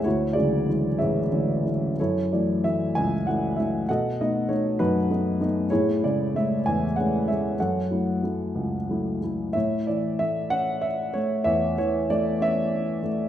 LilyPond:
<<
  \new Staff \with { instrumentName = "Grand piano" } { \time 6/8 \key fis \minor \tempo 4. = 64 << { cis''8 d''4 e''4 r8 | cis''8 d''8 e''8 gis''8 fis''8 e''8 | fis''8 dis''8 cis''8 b'4 r8 | cis''8 d''8 e''8 gis''8 fis''8 e''8 |
fis''2~ fis''8 r8 | \key a \major e''8 d''8 e''8 fis''8 e''8 cis''8 | e''8 cis''8 d''8 e''4 r8 | } \\ { <e' fis'>8 <fis' gis'>4 <gis' cis''>4. | <e' a'>4. r4. | <a' dis''>4. <dis' fis'>4. | <e' gis'>4. r4. |
<a' cis''>2~ <a' cis''>8 r8 | cis''4. r4. | cis''4. r4. | } >> }
  \new Staff \with { instrumentName = "Grand piano" } { \clef bass \time 6/8 \key fis \minor d,8 <cis d e fis gis>8 <d e fis gis e'>8 a,,8 <d e fis gis cis'>8 <d e fis gis cis'>8 | fis,8 <e fis a>8 <e fis a>8 cis,8 <e fis a>8 <e fis a>8 | b,8 <a b dis'>8 <a b dis'>8 fis,8 <a b dis'>8 <a b dis'>8 | a,8 <cis gis a>8 <gis a cis'>8 e,8 <gis a cis'>8 <gis a cis'>8 |
fis,8 <fis a e'>8 <fis a e'>8 cis,8 <fis a e'>8 <fis a e'>8 | \key a \major a,8 e8 a8 cis'4 a8 | e,8 e8 a8 cis'4 a8 | }
>>